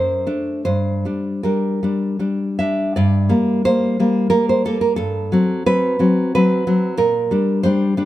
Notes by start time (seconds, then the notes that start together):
Already playing: F#2 C5
0.27 A3 D4
0.65 G2 C5
1.05 G3 D4
1.43 G3 D4 A#4
1.83 G3 D4
2.19 G3 D4
2.59 G3 D4 E5
2.96 G2 D5
3.29 G3 A#3
3.65 G3 A#3 C5
4.00 G3 A#3
4.30 G3 A#3 A#4
4.49 C5
4.65 G3 A#3 A4
4.81 A#4
4.96 G2 A4
5.32 F#3 C4
5.66 F#3 C4 B4
5.99 F#3 C4
6.35 F#3 C4 B4
6.67 F#3 C4
6.97 A#2 A#4
7.31 G3 D4
7.63 G3 D4 C5
7.97 G3 D4